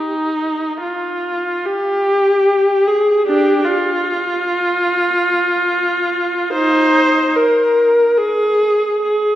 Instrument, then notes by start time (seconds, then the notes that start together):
viola
Already playing: D#4
0.82 F4
1.65 G4
2.87 G#4
3.27 D4 G4
3.65 F4
6.53 D#4 C5
7.35 A#4
8.18 G#4
9.03 G#4